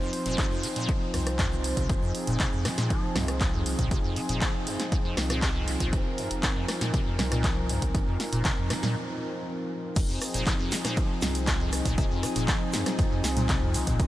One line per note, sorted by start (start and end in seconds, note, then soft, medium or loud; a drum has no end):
0.00 0.11 F2 medium
0.00 9.92 F3 medium
0.00 8.95 C4 medium
0.00 9.92 C4 medium
0.00 9.92 D#4 medium
0.00 8.95 F4 medium
0.00 1.88 C5 medium
0.00 8.95 D#5 medium
0.00 8.95 G#5 medium
0.13 open hi-hat loud
0.26 0.36 F1 medium
0.26 0.36 A#2 loud
0.26 closed hi-hat medium
0.38 0.45 C3 loud
0.38 kick loud
0.38 clap loud
0.38 closed hi-hat medium
0.51 0.65 F2 medium
0.63 0.68 D#3 loud
0.63 open hi-hat loud
0.76 0.90 A#2 loud
0.76 closed hi-hat medium
0.89 0.93 F3 medium
0.89 kick loud
0.89 closed hi-hat soft
1.14 1.73 C2 loud
1.14 1.21 F2 medium
1.14 cross-stick medium
1.14 open hi-hat loud
1.27 cross-stick medium
1.27 closed hi-hat medium
1.39 1.46 F#2 loud
1.39 kick loud
1.39 clap loud
1.39 closed hi-hat soft
1.52 1.56 D#3 medium
1.64 open hi-hat loud
1.77 1.87 C2 medium
1.77 1.87 C3 medium
1.77 kick medium
1.77 closed hi-hat medium
1.89 2.00 F1 medium
1.89 1.94 F2 loud
1.89 5.91 G#4 medium
1.89 kick loud
1.89 closed hi-hat soft
2.02 2.13 F2 medium
2.15 open hi-hat loud
2.27 2.38 F1 loud
2.27 2.38 A#2 loud
2.27 closed hi-hat medium
2.40 2.47 C3 loud
2.40 kick loud
2.40 clap loud
2.40 closed hi-hat medium
2.53 2.67 F2 medium
2.65 2.69 D#3 loud
2.65 cross-stick medium
2.65 snare medium
2.65 open hi-hat loud
2.78 2.92 A#2 loud
2.78 snare medium
2.78 closed hi-hat medium
2.90 3.17 F3 medium
2.90 kick loud
2.90 closed hi-hat soft
3.16 3.75 C2 loud
3.16 3.26 F#2 loud
3.16 cross-stick medium
3.16 snare medium
3.16 open hi-hat loud
3.16 low conga medium
3.28 cross-stick medium
3.28 closed hi-hat medium
3.41 3.45 F2 loud
3.41 kick loud
3.41 clap loud
3.41 closed hi-hat medium
3.54 3.64 F2 medium
3.66 open hi-hat loud
3.79 3.89 C2 medium
3.79 3.89 A#2 loud
3.79 kick medium
3.79 closed hi-hat medium
3.91 4.02 F1 loud
3.91 3.98 C3 loud
3.91 kick loud
3.91 closed hi-hat soft
4.04 4.18 F2 medium
4.16 4.21 D#3 loud
4.16 open hi-hat medium
4.29 4.39 F1 loud
4.29 4.43 A#2 loud
4.29 closed hi-hat medium
4.41 4.68 F3 medium
4.41 kick loud
4.41 clap loud
4.41 closed hi-hat medium
4.67 4.77 F#2 loud
4.67 open hi-hat loud
4.80 snare medium
4.80 closed hi-hat medium
4.92 4.96 F2 loud
4.92 kick loud
4.92 closed hi-hat soft
5.05 5.15 F2 medium
5.17 5.77 C2 loud
5.17 cross-stick medium
5.17 snare medium
5.17 open hi-hat loud
5.30 5.40 A#2 loud
5.30 cross-stick medium
5.30 closed hi-hat medium
5.42 5.50 C3 loud
5.42 kick loud
5.42 clap loud
5.42 closed hi-hat medium
5.55 5.69 F2 medium
5.68 5.72 D#3 loud
5.68 open hi-hat loud
5.80 5.91 C2 medium
5.80 5.94 A#2 loud
5.80 kick medium
5.80 closed hi-hat medium
5.93 6.03 F1 loud
5.93 6.20 F3 medium
5.93 9.95 A#4 medium
5.93 kick loud
5.93 closed hi-hat medium
6.18 6.29 F#2 loud
6.18 open hi-hat loud
6.31 6.41 F1 loud
6.31 closed hi-hat medium
6.43 6.48 F2 loud
6.43 kick loud
6.43 clap loud
6.43 closed hi-hat medium
6.56 6.66 F2 medium
6.69 cross-stick medium
6.69 snare medium
6.69 open hi-hat loud
6.81 6.92 A#2 loud
6.81 snare medium
6.81 closed hi-hat medium
6.94 7.01 C3 loud
6.94 kick loud
6.94 closed hi-hat medium
7.07 7.20 F2 medium
7.19 7.78 C2 loud
7.19 7.23 D#3 loud
7.19 cross-stick medium
7.19 snare medium
7.19 open hi-hat loud
7.19 low conga medium
7.32 7.46 A#2 loud
7.32 cross-stick medium
7.32 closed hi-hat medium
7.44 7.71 F3 medium
7.44 kick loud
7.44 clap loud
7.44 closed hi-hat medium
7.69 7.80 F#2 loud
7.69 open hi-hat medium
7.82 7.92 C2 medium
7.82 kick medium
7.82 closed hi-hat medium
7.95 8.05 F1 loud
7.95 7.99 F2 loud
7.95 kick loud
7.95 closed hi-hat medium
8.07 8.18 F2 medium
8.20 snare medium
8.20 open hi-hat loud
8.33 8.43 F1 loud
8.33 8.43 A#2 loud
8.33 closed hi-hat medium
8.45 8.52 C3 loud
8.45 kick loud
8.45 clap loud
8.45 closed hi-hat medium
8.58 8.72 F2 medium
8.70 8.74 D#3 loud
8.70 cross-stick medium
8.70 snare medium
8.70 open hi-hat loud
8.83 8.95 A#2 loud
8.83 snare medium
8.83 open hi-hat medium
8.83 low conga medium
9.96 10.07 F1 loud
9.96 10.00 F2 loud
9.96 14.07 F3 medium
9.96 14.07 C4 medium
9.96 14.07 D#4 medium
9.96 13.98 G#4 medium
9.96 kick loud
9.96 closed hi-hat medium
9.96 crash loud
9.96 shaker soft
10.09 10.19 F2 medium
10.09 14.07 F4 medium
10.09 14.07 G#5 medium
10.21 cross-stick medium
10.21 open hi-hat loud
10.21 shaker medium
10.34 10.44 F1 medium
10.34 10.44 A#2 loud
10.34 closed hi-hat medium
10.34 shaker medium
10.46 10.54 C3 loud
10.46 kick loud
10.46 clap loud
10.46 closed hi-hat medium
10.46 shaker soft
10.59 10.73 F2 medium
10.59 14.07 D#5 medium
10.72 10.76 D#3 loud
10.72 snare medium
10.72 open hi-hat loud
10.72 shaker loud
10.85 10.99 A#2 loud
10.85 cross-stick medium
10.85 snare medium
10.85 closed hi-hat medium
10.85 shaker soft
10.97 11.24 F3 medium
10.97 kick loud
10.97 closed hi-hat medium
10.97 shaker soft
11.22 11.82 C2 loud
11.22 11.33 F#2 loud
11.22 snare medium
11.22 open hi-hat loud
11.22 low conga medium
11.22 shaker loud
11.35 closed hi-hat medium
11.35 shaker medium
11.47 11.52 F2 loud
11.47 kick loud
11.47 clap loud
11.47 closed hi-hat medium
11.47 shaker soft
11.60 11.71 F2 medium
11.73 cross-stick medium
11.73 open hi-hat loud
11.73 shaker medium
11.85 11.96 C2 medium
11.85 11.96 A#2 loud
11.85 kick medium
11.85 closed hi-hat medium
11.85 shaker medium
11.98 12.08 F1 loud
11.98 12.05 C3 loud
11.98 kick loud
11.98 closed hi-hat medium
11.98 shaker soft
12.11 12.25 F2 medium
12.23 12.27 D#3 loud
12.23 cross-stick medium
12.23 open hi-hat loud
12.23 shaker medium
12.35 12.46 F1 loud
12.35 12.50 A#2 loud
12.35 closed hi-hat medium
12.35 shaker medium
12.48 12.75 F3 medium
12.48 kick loud
12.48 clap loud
12.48 closed hi-hat medium
12.48 shaker soft
12.73 12.84 F#2 loud
12.73 snare medium
12.73 open hi-hat loud
12.73 shaker medium
12.86 cross-stick medium
12.86 snare medium
12.86 closed hi-hat medium
12.86 low conga medium
12.86 shaker soft
12.99 13.03 F2 loud
12.99 kick loud
12.99 closed hi-hat medium
12.99 shaker soft
13.12 13.22 F2 medium
13.24 13.83 C2 loud
13.24 snare medium
13.24 open hi-hat loud
13.24 shaker medium
13.37 13.47 A#2 loud
13.37 closed hi-hat medium
13.37 low conga medium
13.37 shaker medium
13.49 13.56 C3 loud
13.49 kick loud
13.49 clap loud
13.49 closed hi-hat medium
13.49 shaker soft
13.62 13.76 F2 medium
13.74 13.79 D#3 loud
13.74 open hi-hat loud
13.74 shaker loud
13.87 13.97 C2 medium
13.87 14.01 A#2 loud
13.87 kick medium
13.87 closed hi-hat medium
13.87 shaker medium
13.99 14.07 F1 loud
13.99 14.07 F3 medium
13.99 14.07 F4 medium
13.99 kick loud
13.99 closed hi-hat soft
13.99 shaker soft